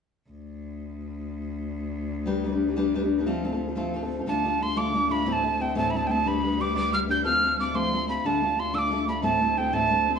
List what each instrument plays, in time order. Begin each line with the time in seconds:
0.30 cello D2
2.26 steel-string acoustic guitar G3 D4 G4 B4
2.44 steel-string acoustic guitar G3 D4 G4 B4
2.52 steel-string acoustic guitar D4 G4 B4
2.68 steel-string acoustic guitar D4 G4 B4
2.76 steel-string acoustic guitar G3 D4 G4 B4
2.94 steel-string acoustic guitar G3 D4 G4 B4
3.03 steel-string acoustic guitar D4 G4 B4
3.19 steel-string acoustic guitar D4 G4 B4
3.26 steel-string acoustic guitar F3 A3 C4 F4 A4
3.44 steel-string acoustic guitar A3 C4 F4 A4
3.52 steel-string acoustic guitar C4 F4 A4
3.68 steel-string acoustic guitar C4 F4 A4
3.75 steel-string acoustic guitar F3 A3 C4 F4 A4
3.94 steel-string acoustic guitar A3 C4 F4 A4
4.03 steel-string acoustic guitar C4 F4 A4
4.19 steel-string acoustic guitar C4 F4 A4
4.26 cello D2, steel-string acoustic guitar D3 A3 D4 F4 A4, tin whistle A5
4.44 steel-string acoustic guitar A3 D4 F4 A4
4.60 steel-string acoustic guitar A3 D4 F4 A4, tin whistle C6
4.76 steel-string acoustic guitar D3 A3 D4 F4 A4, tin whistle D6
4.94 steel-string acoustic guitar A3 D4 F4 A4
5.09 steel-string acoustic guitar A3 D4 F4 A4, tin whistle B5
5.26 steel-string acoustic guitar A2 E3 A3 C4 E4 A4, tin whistle B5
5.33 tin whistle A5
5.43 steel-string acoustic guitar A3 C4 E4 A4
5.60 steel-string acoustic guitar A3 C4 E4 A4, tin whistle G5
5.75 steel-string acoustic guitar A2 E3 A3 C4 E4 A4, tin whistle A5
5.91 steel-string acoustic guitar A3 C4, tin whistle B5
5.95 steel-string acoustic guitar E4 A4, tin whistle A5
6.07 steel-string acoustic guitar A3 C4 E4 A4, tin whistle G5
6.11 tin whistle A5
6.25 steel-string acoustic guitar G3 D4 G4 B4, tin whistle B5
6.43 steel-string acoustic guitar G3 D4 G4 B4
6.59 steel-string acoustic guitar G3 D4 G4 B4, tin whistle D6
6.75 steel-string acoustic guitar G3 D4 G4 B4, tin whistle D6
6.92 steel-string acoustic guitar G3 D4 G4 B4, tin whistle F6
7.08 steel-string acoustic guitar G3 D4 G4 B4, tin whistle G6
7.24 steel-string acoustic guitar F3 A3 C4 F4 A4, tin whistle F6
7.42 steel-string acoustic guitar A3 C4 F4 A4
7.58 steel-string acoustic guitar A3 C4 F4 A4, tin whistle D6
7.74 steel-string acoustic guitar F3 A3 C4 F4 A4, tin whistle C6
7.93 steel-string acoustic guitar A3 C4 F4 A4
8.07 steel-string acoustic guitar A3 C4 F4 A4, tin whistle B5
8.24 cello D2, steel-string acoustic guitar D3 A3 D4 F4 A4, tin whistle A5
8.42 steel-string acoustic guitar A3 D4 F4 A4
8.57 steel-string acoustic guitar A3 D4 F4 A4, tin whistle C6
8.73 steel-string acoustic guitar D3 A3 D4 F4 A4, tin whistle E6
8.79 tin whistle D6
8.91 steel-string acoustic guitar A3 D4 F4 A4
9.07 steel-string acoustic guitar A3 D4 F4 A4, tin whistle B5
9.22 steel-string acoustic guitar A2 E3 A3 C4 E4 A4, tin whistle A5
9.41 steel-string acoustic guitar A3 C4 E4 A4
9.57 steel-string acoustic guitar A3 C4 E4 A4, tin whistle G5
9.73 steel-string acoustic guitar A2 E3 A3 C4 E4 A4, tin whistle A5
9.91 steel-string acoustic guitar A3 C4 E4 A4
10.07 steel-string acoustic guitar A3 C4 E4 A4
10.16 tin whistle C6